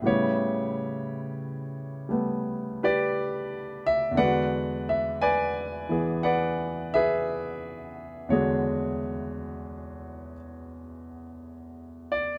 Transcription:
grand piano
0.02 A2 G3 B3
0.06 C#3 E4 G4 C#5
2.09 G3 A3 B3
2.83 G4 B4 D5
3.87 E5
4.11 E2 D3
4.17 G#3 B4 D5 F#5
4.22 F#4
4.89 E5
5.22 B4 D5 G#5
5.89 E3 B3 G#4
6.23 B4 D5 F#5
6.94 G#4 B4 E5
8.29 E2 D3 G#3 F#4 C#5
8.33 G#4
12.12 D5

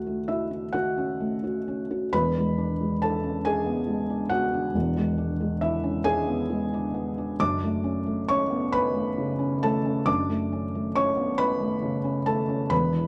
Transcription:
felt piano
Already playing: D2 A3 F#4 F#5
0.07 A3
0.28 E4 F#4 E5
0.51 E4
0.73 F#4 F#5
0.98 C#4
1.20 A3
1.44 F#4
1.68 C#4
1.91 F#4
2.13 E1 E2 B4 B5
2.38 G#3
2.58 D4
2.81 G#3
3.02 D4 A4 A5
3.23 C#4
3.45 D4 G#4 G#5
3.66 B3
3.87 G#3
4.10 D4
4.30 B3 F#4 F#5
4.53 D4
4.74 E1 E2
4.96 G#3
5.18 D4
5.41 G#3
5.61 D4 E4 E5
5.83 C#4
6.04 D4 G#4 G#5
6.27 B3
6.50 G#3
6.74 D4
6.94 B3
7.18 D4
7.40 F#1 F#2 D4 D6
7.64 A3
7.84 C#4
8.06 A3
8.29 C#4 C#5 C#6
8.50 B3
8.72 C#4 B4 B5
8.94 A3
9.18 C#3
9.39 C#4
9.63 A3 A4 A5
9.85 C#4
10.06 F#1 F#2 D4 D6
10.29 A3
10.52 C#4
10.75 A3
10.96 C#4 C#5 C#6
11.17 B3
11.38 C#4 B4 B5
11.61 A3
11.82 C#3
12.04 C#4
12.26 A3 A4 A5
12.49 C#4
12.70 E1 E2 B4 B5
12.93 E3

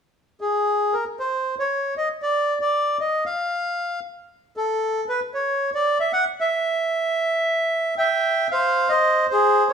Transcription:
bandoneon
0.41 G#4
0.93 A#4
1.19 C5
1.59 C#5
1.97 D#5
2.22 D5
2.61 D5
3.00 D#5
3.26 F5
4.57 A4
5.09 B4
5.34 C#5
5.74 D5
6.00 E5
6.13 F#5
6.41 E5
7.98 E5 G5
8.51 C5 F5
8.89 C5 D#5
9.30 G#4 C5
9.69 C#5

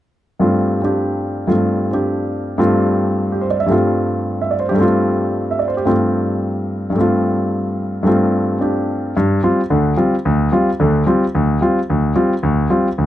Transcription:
grand piano
0.40 G2 G3 A3 C4 F4
0.82 C4 D4 G4
1.47 G2 G3 A3 C4 F4
1.91 C4 D4 G4
2.58 G2 G3 A3 C4 F4
3.32 G4
3.41 C5
3.50 D5
3.60 E5
3.66 G2 G3 A3
3.71 C4 F4
4.42 E5
4.51 D5
4.60 C5
4.69 G2 G4
4.74 G3 A3
4.79 C4 F4
5.51 E5
5.59 D5
5.68 C5
5.77 G4
5.85 G2 G3 A3 C4 F4
6.90 G2 G3
6.96 A3 C4
7.01 F4
8.03 G2 G3 A3
8.07 C4 F4
8.59 C4 D4 G4
9.17 G2
9.43 G3 C4 F4
9.70 D2 D3
9.97 G3 C4 F4
10.25 D2
10.52 G3 C4 F4
10.80 D2 D3
11.06 G3 C4 F4
11.35 D2
11.61 G3 C4 F4
11.90 D2
12.15 G3 C4 F4
12.43 D2
12.70 G3 C4 F4
12.98 D2

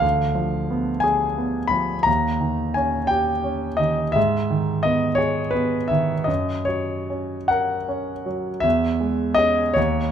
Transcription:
grand piano
0.00 D2 F5
0.35 F3
0.71 B3
1.00 G#4 G#5
1.38 B3
1.68 F3 B5
2.03 D#2 A#5
2.41 D#3
2.74 C#4 G#5
3.07 G4 G5
3.44 C#4
3.77 D#3 D#5
4.12 G#2 E5
4.50 D#3
4.83 B3 D#5
5.15 G#4 C#5
5.51 B3 B4
5.88 D#3 E5
6.24 F#2 D#5
6.65 F#3 C#5
7.10 C#4
7.48 A#4 F#5
7.88 C#4
8.26 F#3
8.60 E2 E5
9.01 G#3
9.35 C#4 G#4 D#5
9.74 D#2 C#5

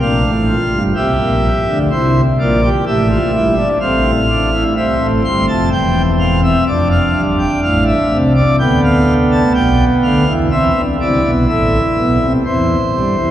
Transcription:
pipe organ
0.01 A#1 A#2 D4 F5
0.25 A1 A2
0.48 F4
0.72 G1 G2
0.95 C2 C3 G4 E5
1.19 A#1 A#2
1.68 D2 D3
1.91 C2 C3 E4 C5
2.40 A#1 A#2 F4 D5
2.64 G4
2.87 A1 A2 G4 E5
3.11 F4
3.34 G1 G2 E4
3.58 D4
3.81 A1 A2 C4 F5
4.29 D4
4.53 E4
4.77 C2 C3 C4 E5
5.00 A1 A2
5.25 G1 G2 C6
5.48 F1 F2 A5
5.72 E1 E2 G5
6.20 F5
6.44 E5
6.68 F1 F2 D4 D5
6.92 F5
7.16 G1 G2
7.39 G5
7.63 A1 A2 F5
7.87 E5
8.12 C2 C3
8.36 D5
8.60 D2 D3 B3 G5
8.84 F5
9.32 A5
9.55 B1 B2 G5
10.03 D2 D3 F5
10.27 E2 E3
10.51 E2 E3 C4 E5
10.76 D2 D3
11.01 C2 C3 E4 D5
11.25 B1 B2
11.48 A1 A2 E5
11.97 B1 B2
12.21 C2 C3
12.45 E2 E3 C5
12.95 G2 G3
13.19 E2 E3

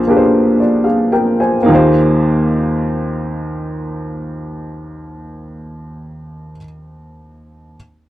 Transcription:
upright piano
Already playing: A#1 A#2 A#3 D4 D#4 G4 G#4 C5
0.07 A#3 D4 G4 G#4 B4
0.17 C5
0.60 F4 D5
0.84 G#4 F5
1.12 A#4 G5
1.40 C5 G#5
1.63 A#3 D#4
1.68 D#2 F4 G4
1.75 C5

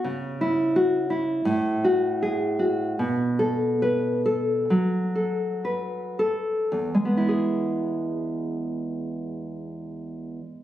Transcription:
nylon-string guitar
0.04 C#3
0.41 E4
0.76 F#4
1.10 E4
1.45 A2
1.84 F#4
2.22 G#4
2.59 F#4
2.99 B2
3.39 A4
3.82 B4
4.26 A4
4.70 F#3
5.15 A4
5.65 B4
6.19 A4
6.72 E2
6.95 G#3
7.05 B3
7.17 E4
7.28 G#4

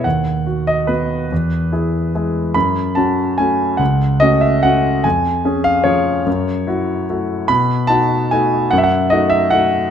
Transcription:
grand piano
0.04 D#2 F#5
0.47 F#4
0.67 D#5
0.87 B3 F#4 B4
1.32 E2
1.72 E4 G#4
2.15 G#3 E4 G#4
2.54 F#2 B5
2.95 C#4 F#4 A5
3.38 A3 C#4 F#4 G#5
3.77 C#2 F#5
4.20 A3 C#4 F#4 D#5
4.41 E5
4.63 A3 C#4 F#4 F#5
5.04 F2 G#5
5.45 C#4 G#4
5.64 F5
5.84 F3 C#4 G#4 C#5
6.26 F#2
6.67 E4 F#4
7.10 A3 E4 F#4
7.48 B2 B5
7.87 D#4 F#4 A5
8.31 A3 D#4 F#4 G#5
8.71 F#2 F#5
8.78 E5
8.83 F#5
9.10 A3 D#4 F#4 D#5
9.30 E5
9.50 A3 D#4 F#4 F#5

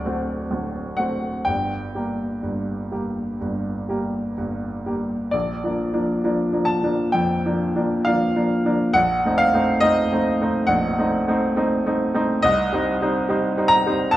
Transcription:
grand piano
Already playing: D1 D2 D5
0.05 A3 C4 F#4
0.51 D1 D2
0.97 A3 C4 F#4 F#5
1.45 G1 G2 G5
1.95 G3 A#3 G4
2.43 G1 G2
2.92 G3 A#3 G4
3.41 G1 G2
3.89 G3 A#3 G4
4.38 G1 G2
4.86 G3 A#3 G4
5.31 A#1 D5
5.64 F3 A#3 D4
5.93 F3 A#3 D4
6.24 F3 A#3 D4
6.53 F3 A#3 D4
6.65 A5
6.83 F3 A#3 D4
7.12 F2 G5
7.46 F3 A#3 D4
7.76 F3 A#3 D4
8.05 F3 A#3 D4 F5
8.36 F3 A#3 D4
8.65 F3 A#3 D4
8.93 A#1 F#5
9.25 A3 C4 D#4
9.38 F5
9.54 A3 C4 D#4
9.80 A3 C4 D#4 D#5
10.12 A3 C4 D#4
10.41 A3 C4 D#4
10.67 A#1 F#5
10.99 A3 C4 D#4
11.28 A3 C4 D#4
11.57 A3 C4 D#4
11.86 A3 C4 D#4
12.14 A3 C4 D#4
12.42 C2 D#5
12.72 G3 C4 D#4
13.02 G3 C4 D#4
13.29 G3 C4 D#4
13.57 G3 C4 D#4
13.68 A#5
13.86 G3 C4 D#4
14.11 C2 A5

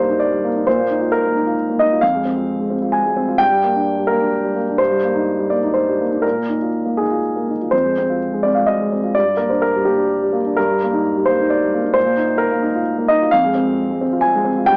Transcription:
grand piano
Already playing: G2 G3 A#3 D#4 A#4 C5
0.10 D#4
0.20 D5
0.33 G3
0.44 A#3
0.56 D#4
0.67 A#2 C5
0.80 A#3
0.90 D#4
1.01 F4
1.12 A#4
1.24 A#3
1.36 D#4
1.46 F4
1.70 A#3
1.79 D#4 D#5
1.92 F4
2.01 F2 F5
2.14 G#3
2.25 C4
2.37 F4
2.59 G#3
2.70 C4
2.82 F4
2.92 G#5
3.05 G#3
3.17 C4
3.28 F4
3.38 G2 G5
3.52 G3
3.64 A#3
3.76 D4
3.98 G3
4.07 A#3 A#4
4.20 D4
4.44 G3
4.56 A#3
4.69 D4
4.78 G2 C5
4.91 G3
5.03 A#3
5.14 D#4
5.39 G3
5.50 A#3 D5
5.63 D#4
5.74 C5
5.88 G3
6.01 A#3
6.11 D#4
6.22 A#2 A#4
6.35 A#3
6.49 D#4
6.62 F4
6.86 A#3
6.97 D#4 G#4
7.11 F4
7.36 A#3
7.48 D#4
7.62 F4
7.71 F2 C5
7.84 G#3
7.98 C4
8.10 F4
8.33 G#3
8.43 C4 D5
8.55 F4 F5
8.66 D#5
8.80 G#3
8.92 C4
9.03 F4
9.15 G2 D5
9.28 G3
9.37 A#3 A#4
9.50 D4 C5
9.62 A#4
9.76 G3
9.85 A#3 G4
9.97 D4
10.22 G3
10.33 A#3
10.46 D4
10.57 G2 A#4
10.71 G3
10.83 A#3
10.93 D#4
11.17 G3
11.26 A#3 C5
11.40 D#4
11.50 D5
11.64 G3
11.74 A#3
11.84 D#4
11.94 A#2 C5
12.06 A#3
12.17 D#4
12.28 F4
12.38 A#4
12.51 A#3
12.62 D#4
12.75 F4
12.98 A#3
13.08 D#4 D#5
13.22 F4
13.31 F2 F5
13.44 G#3
13.55 C4
13.68 F4
13.90 G#3
14.01 C4
14.13 F4
14.21 G#5
14.35 G#3
14.45 C4
14.58 F4
14.66 G2 G5

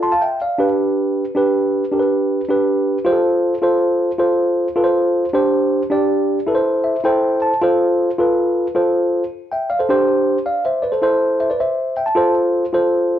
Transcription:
tine electric piano
Already playing: F4 A4
0.03 A5 C6
0.12 F5 A5
0.21 E5 G5
0.42 D5 F5
0.58 D4 G4 B4
1.35 D4 G4 B4
1.92 D4 G4 A#4
1.99 B4
2.49 D4 G4 B4
3.05 F4 G4 C5
3.12 A4
3.62 F4 A4 C5
4.18 F4 A4 C5
4.76 F4 A4 B4
4.84 C5
5.33 D4 G4 C5
5.90 D4 G4 D5
6.47 E4 A4 B4
6.55 C5
6.84 E5
7.04 E4 A4 C5 G5
7.42 A5
7.62 F4 A4 C5
8.19 F4 A4 B4
8.75 F4 A4 C5
9.52 E5 G5
9.70 D5 F5
9.79 A4 C5
9.89 D4 G4 C5
10.46 D5 F5
10.65 C5 E5
10.82 B4 D5
10.92 A4 C5
11.02 E4 A4 C5
11.40 C5 E5
11.50 B4 D5
11.60 C5 E5
11.97 E5 G5
12.06 A5
12.15 F4 A4 C5
12.73 F4 A4 C5

